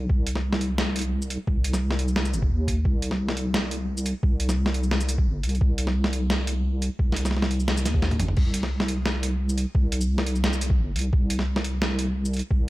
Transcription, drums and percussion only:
0.09 kick
0.27 closed hi-hat
0.35 snare
0.53 snare
0.61 closed hi-hat
0.78 snare
0.96 closed hi-hat
0.99 closed hi-hat
1.01 closed hi-hat
1.22 shaker
1.30 closed hi-hat, shaker
1.47 kick
1.64 closed hi-hat
1.73 snare, shaker
1.91 snare
1.99 closed hi-hat
2.08 shaker
2.16 snare
2.25 shaker
2.33 shaker
2.42 kick
2.68 kick, closed hi-hat
2.85 kick
3.02 closed hi-hat
3.11 snare
3.29 snare
3.37 closed hi-hat
3.54 snare
3.71 closed hi-hat
3.97 shaker
4.06 closed hi-hat, shaker
4.23 kick
4.40 closed hi-hat
4.49 snare, shaker
4.66 snare
4.74 closed hi-hat
4.83 shaker
4.91 snare
5.00 shaker
5.09 closed hi-hat, shaker
5.18 kick
5.43 closed hi-hat
5.49 closed hi-hat
5.55 closed hi-hat
5.61 kick
5.78 closed hi-hat
5.87 snare
6.04 snare
6.13 closed hi-hat
6.30 snare
6.47 closed hi-hat
6.82 closed hi-hat, shaker
6.99 kick
7.12 snare
7.16 closed hi-hat
7.25 snare, shaker
7.31 snare
7.37 snare
7.42 snare
7.51 closed hi-hat
7.60 shaker
7.68 snare
7.77 shaker
7.85 snare, closed hi-hat, shaker
7.94 kick, high tom
8.02 snare
8.11 closed hi-hat, mid tom
8.20 closed hi-hat, mid tom
8.28 mid tom
8.37 kick, crash
8.54 closed hi-hat
8.63 snare
8.80 snare
8.88 closed hi-hat
9.06 snare
9.23 closed hi-hat
9.49 shaker
9.58 closed hi-hat, shaker
9.75 kick
9.92 closed hi-hat
10.01 shaker
10.18 snare
10.26 closed hi-hat
10.35 shaker
10.44 snare
10.53 shaker
10.61 closed hi-hat, shaker
10.70 kick
10.96 closed hi-hat
10.99 closed hi-hat
11.01 closed hi-hat
11.13 kick
11.30 closed hi-hat
11.39 snare
11.56 snare
11.64 closed hi-hat
11.82 snare
11.99 closed hi-hat
12.25 shaker
12.33 closed hi-hat, shaker
12.37 closed hi-hat
12.39 closed hi-hat
12.51 kick

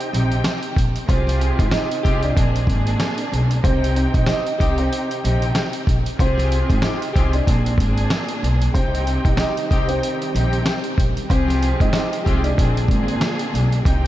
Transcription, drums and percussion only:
0.01 closed hi-hat
0.14 closed hi-hat
0.32 closed hi-hat
0.44 snare, closed hi-hat
0.63 closed hi-hat
0.76 kick, closed hi-hat
0.96 closed hi-hat
1.09 kick, closed hi-hat
1.27 snare, closed hi-hat
1.41 closed hi-hat
1.59 kick, closed hi-hat
1.71 snare, closed hi-hat
1.91 closed hi-hat
2.05 kick, closed hi-hat
2.23 closed hi-hat
2.37 kick, closed hi-hat
2.56 closed hi-hat
2.67 kick, closed hi-hat
2.87 closed hi-hat
3.00 snare, closed hi-hat
3.18 closed hi-hat
3.33 closed hi-hat
3.51 closed hi-hat
3.64 kick, closed hi-hat
3.84 closed hi-hat
3.96 closed hi-hat
4.14 kick, closed hi-hat
4.26 snare, closed hi-hat
4.47 closed hi-hat
4.60 kick, closed hi-hat
4.78 closed hi-hat
4.93 closed hi-hat
5.11 closed hi-hat
5.25 closed hi-hat
5.42 closed hi-hat
5.55 snare, closed hi-hat
5.73 closed hi-hat
5.87 kick, closed hi-hat
6.06 closed hi-hat
6.19 kick, closed hi-hat
6.38 snare, closed hi-hat
6.52 closed hi-hat
6.70 kick, closed hi-hat
6.82 snare, closed hi-hat
7.02 closed hi-hat
7.16 kick, closed hi-hat
7.33 closed hi-hat
7.47 kick, closed hi-hat
7.66 closed hi-hat
7.78 kick, closed hi-hat
7.98 closed hi-hat
8.10 snare, closed hi-hat
8.29 closed hi-hat
8.44 closed hi-hat
8.62 closed hi-hat
8.75 kick, closed hi-hat
8.95 closed hi-hat
9.07 closed hi-hat
9.25 kick, closed hi-hat
9.37 snare, closed hi-hat
9.57 closed hi-hat
9.71 kick, closed hi-hat
9.89 closed hi-hat
10.03 closed hi-hat
10.22 closed hi-hat
10.36 closed hi-hat
10.53 closed hi-hat
10.66 snare, closed hi-hat
10.84 closed hi-hat
10.98 kick, closed hi-hat
11.17 closed hi-hat
11.30 kick, closed hi-hat
11.48 snare, closed hi-hat
11.63 closed hi-hat
11.80 kick, closed hi-hat
11.93 snare, closed hi-hat
12.13 closed hi-hat
12.26 kick, closed hi-hat
12.44 closed hi-hat
12.58 kick, closed hi-hat
12.77 closed hi-hat
12.88 kick, closed hi-hat
13.08 closed hi-hat
13.21 snare, closed hi-hat
13.39 closed hi-hat
13.55 closed hi-hat
13.72 closed hi-hat
13.85 kick, closed hi-hat

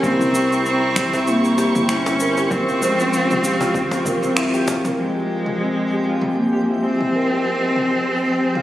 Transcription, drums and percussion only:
0.03 kick, shaker
0.21 mid tom, shaker
0.35 shaker
0.52 shaker
0.66 shaker
0.96 finger snap, kick, cajon slap, mid tom, shaker
1.13 cajon bass, shaker
1.27 shaker
1.44 shaker
1.58 cajon slap, shaker
1.75 cajon slap, mid tom, shaker
1.89 finger snap, shaker
2.06 cajon slap, shaker
2.20 shaker
2.37 cajon slap, shaker
2.51 kick, mid tom, shaker
2.68 shaker
2.82 shaker
3.00 shaker
3.13 shaker
3.30 mid tom, shaker
3.43 cajon slap, shaker
3.61 cajon bass, shaker
3.74 kick, shaker
3.91 cajon slap, shaker
4.05 kick, mid tom, shaker
4.23 cajon slap, shaker
4.37 finger snap, shaker
4.54 shaker
4.67 cajon bass, cajon slap, shaker
4.85 cajon slap, mid tom, shaker
5.46 mid tom
6.21 mid tom
7.01 mid tom
7.76 mid tom
8.55 mid tom

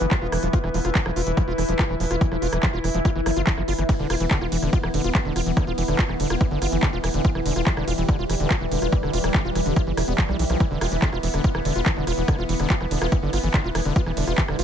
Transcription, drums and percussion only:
0.01 closed hi-hat
0.11 kick, cross-stick, clap, closed hi-hat
0.32 cross-stick, open hi-hat
0.43 closed hi-hat
0.53 kick, closed hi-hat
0.64 cross-stick
0.74 open hi-hat
0.85 cross-stick, closed hi-hat
0.95 kick, clap, closed hi-hat
1.06 cross-stick
1.16 open hi-hat
1.27 closed hi-hat
1.37 kick, cross-stick, closed hi-hat
1.58 cross-stick, open hi-hat
1.69 closed hi-hat
1.79 kick, cross-stick, clap, closed hi-hat
2.00 open hi-hat
2.11 cross-stick, closed hi-hat
2.21 kick, closed hi-hat
2.32 cross-stick
2.42 open hi-hat
2.53 cross-stick, closed hi-hat
2.63 kick, clap, closed hi-hat
2.84 cross-stick, open hi-hat
2.95 closed hi-hat
3.05 kick, cross-stick, closed hi-hat
3.26 cross-stick, open hi-hat
3.37 closed hi-hat
3.47 kick, clap, closed hi-hat
3.58 cross-stick
3.68 open hi-hat
3.79 cross-stick, closed hi-hat
3.89 kick, cross-stick, closed hi-hat, ride
4.10 cross-stick, open hi-hat, ride
4.20 closed hi-hat
4.31 kick, clap, closed hi-hat, ride
4.41 cross-stick
4.52 open hi-hat, ride
4.62 cross-stick, closed hi-hat
4.73 kick, closed hi-hat, ride
4.83 cross-stick
4.94 open hi-hat, ride
5.04 closed hi-hat
5.15 kick, cross-stick, clap, closed hi-hat, ride
5.36 cross-stick, open hi-hat, ride
5.46 closed hi-hat
5.57 kick, cross-stick, closed hi-hat, ride
5.78 open hi-hat, ride
5.88 cross-stick, closed hi-hat
5.99 kick, clap, closed hi-hat, ride
6.09 cross-stick
6.20 open hi-hat, ride
6.30 cross-stick, closed hi-hat
6.41 kick, closed hi-hat, ride
6.62 cross-stick, open hi-hat, ride
6.72 closed hi-hat
6.83 kick, cross-stick, clap, closed hi-hat, ride
7.04 cross-stick, open hi-hat, ride
7.14 closed hi-hat
7.25 kick, closed hi-hat, ride
7.35 cross-stick
7.46 open hi-hat, ride
7.56 cross-stick, closed hi-hat
7.67 kick, clap, closed hi-hat, ride
7.77 cross-stick
7.88 open hi-hat, ride
7.98 closed hi-hat
8.09 kick, cross-stick, closed hi-hat, ride
8.30 cross-stick, open hi-hat, ride
8.40 closed hi-hat
8.51 kick, cross-stick, clap, closed hi-hat, ride
8.72 open hi-hat, ride
8.82 cross-stick, closed hi-hat
8.92 kick, closed hi-hat, ride
9.03 cross-stick
9.13 open hi-hat, ride
9.24 cross-stick, closed hi-hat
9.34 kick, clap, closed hi-hat, ride
9.55 cross-stick, open hi-hat, ride
9.66 closed hi-hat
9.76 kick, cross-stick, closed hi-hat, ride
9.97 cross-stick, open hi-hat, ride
10.08 closed hi-hat
10.18 kick, clap, closed hi-hat, ride
10.29 cross-stick
10.39 open hi-hat, ride
10.50 cross-stick, closed hi-hat
10.60 kick, cross-stick, closed hi-hat, ride
10.81 cross-stick, open hi-hat, ride
10.92 closed hi-hat
11.02 kick, clap, closed hi-hat, ride
11.13 cross-stick
11.23 open hi-hat, ride
11.34 cross-stick, closed hi-hat
11.44 kick, closed hi-hat, ride
11.55 cross-stick
11.65 open hi-hat, ride
11.76 closed hi-hat
11.86 kick, cross-stick, clap, closed hi-hat, ride
12.07 cross-stick, open hi-hat, ride
12.18 closed hi-hat
12.28 kick, cross-stick, closed hi-hat, ride
12.49 open hi-hat, ride
12.60 cross-stick, closed hi-hat
12.70 kick, clap, closed hi-hat, ride
12.81 cross-stick
12.91 open hi-hat, ride
13.02 cross-stick, closed hi-hat
13.12 kick, closed hi-hat, ride
13.33 cross-stick, open hi-hat, ride
13.44 closed hi-hat
13.54 kick, cross-stick, clap, closed hi-hat, ride
13.75 cross-stick, open hi-hat, ride
13.85 closed hi-hat
13.96 kick, closed hi-hat, ride
14.06 cross-stick
14.17 open hi-hat, ride
14.27 cross-stick, closed hi-hat
14.38 kick, clap, closed hi-hat, ride
14.48 cross-stick
14.59 open hi-hat, ride

